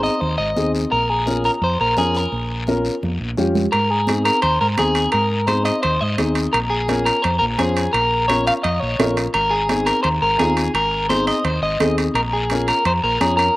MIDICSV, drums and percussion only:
0, 0, Header, 1, 2, 480
1, 0, Start_track
1, 0, Tempo, 350877
1, 1260, Time_signature, 4, 2, 24, 8
1, 18557, End_track
2, 0, Start_track
2, 0, Title_t, "Drums"
2, 54, Note_on_c, 9, 73, 63
2, 191, Note_off_c, 9, 73, 0
2, 290, Note_on_c, 9, 74, 59
2, 294, Note_on_c, 9, 63, 30
2, 427, Note_off_c, 9, 74, 0
2, 431, Note_off_c, 9, 63, 0
2, 773, Note_on_c, 9, 63, 74
2, 773, Note_on_c, 9, 73, 64
2, 909, Note_off_c, 9, 63, 0
2, 910, Note_off_c, 9, 73, 0
2, 1021, Note_on_c, 9, 73, 63
2, 1158, Note_off_c, 9, 73, 0
2, 1257, Note_on_c, 9, 63, 33
2, 1265, Note_on_c, 9, 74, 63
2, 1394, Note_off_c, 9, 63, 0
2, 1402, Note_off_c, 9, 74, 0
2, 1736, Note_on_c, 9, 73, 60
2, 1740, Note_on_c, 9, 63, 78
2, 1873, Note_off_c, 9, 73, 0
2, 1877, Note_off_c, 9, 63, 0
2, 1972, Note_on_c, 9, 73, 60
2, 2109, Note_off_c, 9, 73, 0
2, 2214, Note_on_c, 9, 74, 64
2, 2221, Note_on_c, 9, 63, 31
2, 2351, Note_off_c, 9, 74, 0
2, 2358, Note_off_c, 9, 63, 0
2, 2691, Note_on_c, 9, 73, 63
2, 2696, Note_on_c, 9, 63, 74
2, 2828, Note_off_c, 9, 73, 0
2, 2833, Note_off_c, 9, 63, 0
2, 2935, Note_on_c, 9, 73, 61
2, 3072, Note_off_c, 9, 73, 0
2, 3177, Note_on_c, 9, 74, 66
2, 3189, Note_on_c, 9, 63, 30
2, 3314, Note_off_c, 9, 74, 0
2, 3326, Note_off_c, 9, 63, 0
2, 3652, Note_on_c, 9, 73, 59
2, 3665, Note_on_c, 9, 63, 78
2, 3789, Note_off_c, 9, 73, 0
2, 3802, Note_off_c, 9, 63, 0
2, 3896, Note_on_c, 9, 73, 59
2, 4033, Note_off_c, 9, 73, 0
2, 4142, Note_on_c, 9, 74, 59
2, 4145, Note_on_c, 9, 63, 65
2, 4279, Note_off_c, 9, 74, 0
2, 4282, Note_off_c, 9, 63, 0
2, 4616, Note_on_c, 9, 73, 64
2, 4623, Note_on_c, 9, 64, 67
2, 4753, Note_off_c, 9, 73, 0
2, 4760, Note_off_c, 9, 64, 0
2, 4858, Note_on_c, 9, 64, 75
2, 4861, Note_on_c, 9, 73, 61
2, 4995, Note_off_c, 9, 64, 0
2, 4998, Note_off_c, 9, 73, 0
2, 5095, Note_on_c, 9, 63, 33
2, 5096, Note_on_c, 9, 74, 66
2, 5098, Note_on_c, 9, 65, 67
2, 5232, Note_off_c, 9, 63, 0
2, 5233, Note_off_c, 9, 74, 0
2, 5235, Note_off_c, 9, 65, 0
2, 5568, Note_on_c, 9, 63, 85
2, 5582, Note_on_c, 9, 73, 63
2, 5590, Note_on_c, 9, 65, 60
2, 5705, Note_off_c, 9, 63, 0
2, 5719, Note_off_c, 9, 73, 0
2, 5727, Note_off_c, 9, 65, 0
2, 5820, Note_on_c, 9, 65, 61
2, 5826, Note_on_c, 9, 73, 70
2, 5957, Note_off_c, 9, 65, 0
2, 5963, Note_off_c, 9, 73, 0
2, 6050, Note_on_c, 9, 65, 63
2, 6052, Note_on_c, 9, 63, 32
2, 6058, Note_on_c, 9, 74, 64
2, 6186, Note_off_c, 9, 65, 0
2, 6188, Note_off_c, 9, 63, 0
2, 6195, Note_off_c, 9, 74, 0
2, 6531, Note_on_c, 9, 63, 78
2, 6535, Note_on_c, 9, 65, 65
2, 6536, Note_on_c, 9, 73, 66
2, 6668, Note_off_c, 9, 63, 0
2, 6671, Note_off_c, 9, 65, 0
2, 6673, Note_off_c, 9, 73, 0
2, 6772, Note_on_c, 9, 65, 63
2, 6777, Note_on_c, 9, 73, 66
2, 6909, Note_off_c, 9, 65, 0
2, 6913, Note_off_c, 9, 73, 0
2, 7002, Note_on_c, 9, 65, 63
2, 7009, Note_on_c, 9, 74, 66
2, 7015, Note_on_c, 9, 63, 32
2, 7139, Note_off_c, 9, 65, 0
2, 7146, Note_off_c, 9, 74, 0
2, 7152, Note_off_c, 9, 63, 0
2, 7485, Note_on_c, 9, 73, 63
2, 7494, Note_on_c, 9, 63, 78
2, 7495, Note_on_c, 9, 65, 57
2, 7622, Note_off_c, 9, 73, 0
2, 7631, Note_off_c, 9, 63, 0
2, 7632, Note_off_c, 9, 65, 0
2, 7729, Note_on_c, 9, 73, 68
2, 7735, Note_on_c, 9, 65, 59
2, 7866, Note_off_c, 9, 73, 0
2, 7872, Note_off_c, 9, 65, 0
2, 7975, Note_on_c, 9, 65, 61
2, 7976, Note_on_c, 9, 63, 31
2, 7977, Note_on_c, 9, 74, 67
2, 8112, Note_off_c, 9, 65, 0
2, 8113, Note_off_c, 9, 63, 0
2, 8113, Note_off_c, 9, 74, 0
2, 8457, Note_on_c, 9, 63, 80
2, 8458, Note_on_c, 9, 65, 64
2, 8464, Note_on_c, 9, 73, 68
2, 8594, Note_off_c, 9, 63, 0
2, 8595, Note_off_c, 9, 65, 0
2, 8600, Note_off_c, 9, 73, 0
2, 8691, Note_on_c, 9, 65, 62
2, 8699, Note_on_c, 9, 73, 67
2, 8828, Note_off_c, 9, 65, 0
2, 8836, Note_off_c, 9, 73, 0
2, 8934, Note_on_c, 9, 74, 72
2, 8937, Note_on_c, 9, 63, 33
2, 8950, Note_on_c, 9, 65, 70
2, 9071, Note_off_c, 9, 74, 0
2, 9074, Note_off_c, 9, 63, 0
2, 9087, Note_off_c, 9, 65, 0
2, 9418, Note_on_c, 9, 63, 83
2, 9426, Note_on_c, 9, 65, 60
2, 9429, Note_on_c, 9, 73, 61
2, 9555, Note_off_c, 9, 63, 0
2, 9563, Note_off_c, 9, 65, 0
2, 9566, Note_off_c, 9, 73, 0
2, 9661, Note_on_c, 9, 73, 66
2, 9663, Note_on_c, 9, 65, 60
2, 9798, Note_off_c, 9, 73, 0
2, 9800, Note_off_c, 9, 65, 0
2, 9898, Note_on_c, 9, 63, 33
2, 9905, Note_on_c, 9, 65, 64
2, 9908, Note_on_c, 9, 74, 62
2, 10035, Note_off_c, 9, 63, 0
2, 10041, Note_off_c, 9, 65, 0
2, 10045, Note_off_c, 9, 74, 0
2, 10375, Note_on_c, 9, 63, 75
2, 10382, Note_on_c, 9, 65, 64
2, 10386, Note_on_c, 9, 73, 68
2, 10511, Note_off_c, 9, 63, 0
2, 10519, Note_off_c, 9, 65, 0
2, 10523, Note_off_c, 9, 73, 0
2, 10622, Note_on_c, 9, 73, 70
2, 10624, Note_on_c, 9, 65, 62
2, 10759, Note_off_c, 9, 73, 0
2, 10761, Note_off_c, 9, 65, 0
2, 10864, Note_on_c, 9, 63, 35
2, 10867, Note_on_c, 9, 74, 68
2, 10868, Note_on_c, 9, 65, 63
2, 11001, Note_off_c, 9, 63, 0
2, 11004, Note_off_c, 9, 65, 0
2, 11004, Note_off_c, 9, 74, 0
2, 11344, Note_on_c, 9, 63, 80
2, 11348, Note_on_c, 9, 65, 63
2, 11352, Note_on_c, 9, 73, 59
2, 11481, Note_off_c, 9, 63, 0
2, 11485, Note_off_c, 9, 65, 0
2, 11489, Note_off_c, 9, 73, 0
2, 11582, Note_on_c, 9, 73, 66
2, 11594, Note_on_c, 9, 65, 62
2, 11719, Note_off_c, 9, 73, 0
2, 11731, Note_off_c, 9, 65, 0
2, 11822, Note_on_c, 9, 65, 62
2, 11828, Note_on_c, 9, 74, 67
2, 11831, Note_on_c, 9, 63, 32
2, 11959, Note_off_c, 9, 65, 0
2, 11965, Note_off_c, 9, 74, 0
2, 11967, Note_off_c, 9, 63, 0
2, 12304, Note_on_c, 9, 63, 79
2, 12307, Note_on_c, 9, 65, 66
2, 12307, Note_on_c, 9, 66, 69
2, 12309, Note_on_c, 9, 73, 64
2, 12441, Note_off_c, 9, 63, 0
2, 12444, Note_off_c, 9, 65, 0
2, 12444, Note_off_c, 9, 66, 0
2, 12445, Note_off_c, 9, 73, 0
2, 12543, Note_on_c, 9, 73, 69
2, 12547, Note_on_c, 9, 65, 62
2, 12680, Note_off_c, 9, 73, 0
2, 12684, Note_off_c, 9, 65, 0
2, 12776, Note_on_c, 9, 65, 63
2, 12782, Note_on_c, 9, 74, 69
2, 12786, Note_on_c, 9, 63, 33
2, 12913, Note_off_c, 9, 65, 0
2, 12919, Note_off_c, 9, 74, 0
2, 12923, Note_off_c, 9, 63, 0
2, 13259, Note_on_c, 9, 63, 82
2, 13260, Note_on_c, 9, 73, 66
2, 13261, Note_on_c, 9, 65, 62
2, 13396, Note_off_c, 9, 63, 0
2, 13397, Note_off_c, 9, 65, 0
2, 13397, Note_off_c, 9, 73, 0
2, 13492, Note_on_c, 9, 73, 65
2, 13498, Note_on_c, 9, 65, 61
2, 13629, Note_off_c, 9, 73, 0
2, 13634, Note_off_c, 9, 65, 0
2, 13734, Note_on_c, 9, 65, 62
2, 13742, Note_on_c, 9, 74, 68
2, 13748, Note_on_c, 9, 63, 33
2, 13870, Note_off_c, 9, 65, 0
2, 13879, Note_off_c, 9, 74, 0
2, 13885, Note_off_c, 9, 63, 0
2, 14219, Note_on_c, 9, 65, 64
2, 14219, Note_on_c, 9, 66, 66
2, 14222, Note_on_c, 9, 63, 81
2, 14224, Note_on_c, 9, 73, 67
2, 14356, Note_off_c, 9, 65, 0
2, 14356, Note_off_c, 9, 66, 0
2, 14359, Note_off_c, 9, 63, 0
2, 14361, Note_off_c, 9, 73, 0
2, 14458, Note_on_c, 9, 65, 60
2, 14459, Note_on_c, 9, 73, 71
2, 14595, Note_off_c, 9, 65, 0
2, 14596, Note_off_c, 9, 73, 0
2, 14702, Note_on_c, 9, 65, 67
2, 14704, Note_on_c, 9, 74, 72
2, 14707, Note_on_c, 9, 63, 33
2, 14839, Note_off_c, 9, 65, 0
2, 14841, Note_off_c, 9, 74, 0
2, 14843, Note_off_c, 9, 63, 0
2, 15181, Note_on_c, 9, 63, 79
2, 15185, Note_on_c, 9, 73, 61
2, 15188, Note_on_c, 9, 65, 60
2, 15318, Note_off_c, 9, 63, 0
2, 15322, Note_off_c, 9, 73, 0
2, 15325, Note_off_c, 9, 65, 0
2, 15421, Note_on_c, 9, 65, 60
2, 15439, Note_on_c, 9, 73, 62
2, 15558, Note_off_c, 9, 65, 0
2, 15576, Note_off_c, 9, 73, 0
2, 15659, Note_on_c, 9, 65, 63
2, 15668, Note_on_c, 9, 63, 32
2, 15674, Note_on_c, 9, 74, 67
2, 15795, Note_off_c, 9, 65, 0
2, 15805, Note_off_c, 9, 63, 0
2, 15810, Note_off_c, 9, 74, 0
2, 16141, Note_on_c, 9, 63, 84
2, 16148, Note_on_c, 9, 65, 64
2, 16148, Note_on_c, 9, 66, 65
2, 16155, Note_on_c, 9, 73, 64
2, 16278, Note_off_c, 9, 63, 0
2, 16285, Note_off_c, 9, 65, 0
2, 16285, Note_off_c, 9, 66, 0
2, 16292, Note_off_c, 9, 73, 0
2, 16389, Note_on_c, 9, 65, 59
2, 16395, Note_on_c, 9, 73, 65
2, 16526, Note_off_c, 9, 65, 0
2, 16532, Note_off_c, 9, 73, 0
2, 16626, Note_on_c, 9, 63, 35
2, 16627, Note_on_c, 9, 65, 64
2, 16634, Note_on_c, 9, 74, 70
2, 16763, Note_off_c, 9, 63, 0
2, 16763, Note_off_c, 9, 65, 0
2, 16771, Note_off_c, 9, 74, 0
2, 17097, Note_on_c, 9, 65, 61
2, 17113, Note_on_c, 9, 63, 77
2, 17120, Note_on_c, 9, 73, 63
2, 17234, Note_off_c, 9, 65, 0
2, 17250, Note_off_c, 9, 63, 0
2, 17257, Note_off_c, 9, 73, 0
2, 17345, Note_on_c, 9, 65, 58
2, 17359, Note_on_c, 9, 73, 70
2, 17482, Note_off_c, 9, 65, 0
2, 17495, Note_off_c, 9, 73, 0
2, 17583, Note_on_c, 9, 65, 63
2, 17587, Note_on_c, 9, 63, 32
2, 17592, Note_on_c, 9, 74, 66
2, 17720, Note_off_c, 9, 65, 0
2, 17724, Note_off_c, 9, 63, 0
2, 17728, Note_off_c, 9, 74, 0
2, 18066, Note_on_c, 9, 63, 81
2, 18071, Note_on_c, 9, 65, 65
2, 18076, Note_on_c, 9, 73, 62
2, 18203, Note_off_c, 9, 63, 0
2, 18208, Note_off_c, 9, 65, 0
2, 18213, Note_off_c, 9, 73, 0
2, 18311, Note_on_c, 9, 73, 66
2, 18317, Note_on_c, 9, 65, 62
2, 18448, Note_off_c, 9, 73, 0
2, 18454, Note_off_c, 9, 65, 0
2, 18557, End_track
0, 0, End_of_file